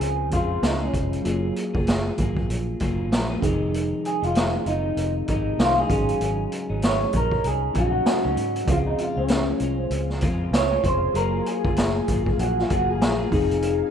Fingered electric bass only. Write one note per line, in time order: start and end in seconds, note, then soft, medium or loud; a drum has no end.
0.00 0.33 C#2 medium
0.33 0.57 F2 medium
0.62 0.88 C#2 medium
0.93 1.19 F1 medium
1.25 1.50 F#1 loud
1.75 2.10 F#1 loud
2.18 2.43 G#1 medium
2.49 2.74 A#1 medium
2.81 3.11 F#1 medium
3.11 3.36 A#1 medium
3.42 3.92 F1 loud
4.23 4.57 F1 medium
4.66 4.91 F#1 medium
4.97 5.22 F1 loud
5.28 5.53 G#1 medium
5.58 5.83 C2 medium
5.90 6.14 G#1 loud
6.20 6.45 G#1 loud
6.70 7.05 G#1 medium
7.13 7.38 A#1 medium
7.44 7.69 C2 medium
7.75 8.00 A#1 loud
8.06 muted fingered electric bass stroke soft
8.25 8.35 C#2 medium
8.37 8.62 G#2 medium
8.67 8.93 C#2 loud
9.17 9.52 C#2 medium
9.60 9.85 C2 medium
9.90 10.24 C#2 medium
10.23 10.48 F2 medium
10.51 10.77 C#2 medium
10.83 11.09 F1 medium
11.14 11.40 F#1 loud
11.64 11.99 F#1 medium
12.08 12.33 G#1 medium
12.38 12.63 A#1 medium
12.71 13.01 F#1 medium
13.01 13.26 A#1 medium
13.32 13.81 F1 loud